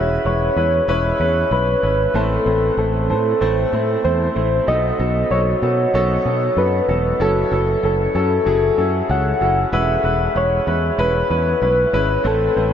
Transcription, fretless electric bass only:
Already playing: E1
0.25 E1
0.56 E2
0.88 E1
1.20 E2
1.51 B1
1.83 G#1
2.14 A1
2.46 A1
2.77 A1
3.10 A2
3.41 A1
3.73 A2
4.05 E2
4.36 A1
4.68 B1
4.99 B1
5.31 B1
5.62 B2
5.94 B1
6.25 B2
6.57 F#2
6.88 E1
7.20 F#1
7.51 F#1
7.83 F#1
8.15 F#2
8.46 F#1
8.78 F#2
9.09 C#2
9.41 F#1
9.73 E1
10.04 E1
10.36 E1
10.67 E2
10.98 E1
11.30 E2
11.62 B1
11.93 G#1
12.25 A1
12.56 A1

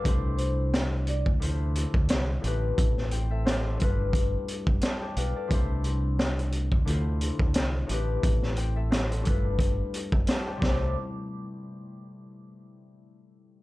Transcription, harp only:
Already playing: G2 G3 F4 G4 A4 D5 F5 G5 A5
0.02 C3 A3 D4
0.06 E4 C5
1.40 D3 A3 E4 F4 C5
2.41 A2 A3 C4
2.45 G4 B4
3.12 C5 G5
3.30 A4 E5
3.45 G4 C5
3.66 E4 A4
3.77 G2 G3 A3
3.81 F4 B4
4.83 D5 A5
5.02 D5 G5
5.16 B4 F5
5.36 A4 D5
5.47 C3 A3 D4
5.52 E4 C5
6.85 D3 A3 E4 F4 C5
7.86 A2 A3 C4
7.91 G4 B4
8.57 C5 G5
8.76 A4 E5
8.91 G4 C5
9.12 E4 A4
9.22 G2 G3 A3
9.27 F4 B4
10.29 D5 A5
10.47 D5 G5
10.56 C3 G3
10.62 A3 E4
10.68 D5

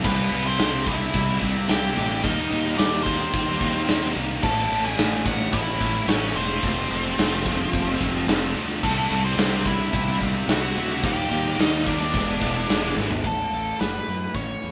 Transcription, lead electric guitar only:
0.05 B3 B4
0.46 C4 C5
0.87 E4 E5
1.70 G4 G5
2.24 D#4 D#5
2.78 D4 D5
3.03 C4 C5
4.43 A4 A5
4.85 G#4 G#5
5.27 F#4 F#5
5.53 E4 E5
6.08 C#4 C#5
6.36 C4 C5
8.83 A3 A4
9.24 C4 C5
9.66 E4 E5
10.51 F#4 F#5
11.04 G4 G5
11.59 D#4 D#5
11.88 D4 D5
13.26 A4
13.54 A4
13.81 B4
14.35 C#5

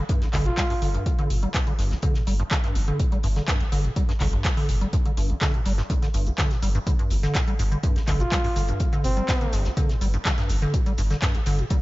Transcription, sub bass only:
0.34 G1
0.82 G1
1.30 G1
1.79 G1
2.27 G1
2.75 G1
3.24 G1
3.72 G1
4.21 G1
4.69 G1
5.17 G1
5.66 G1
6.14 G1
6.62 G1
7.11 G1
7.59 G1
8.08 G1
8.56 G1
9.04 G1
9.53 G1
10.01 G1
10.50 G1
10.98 G1
11.46 G1

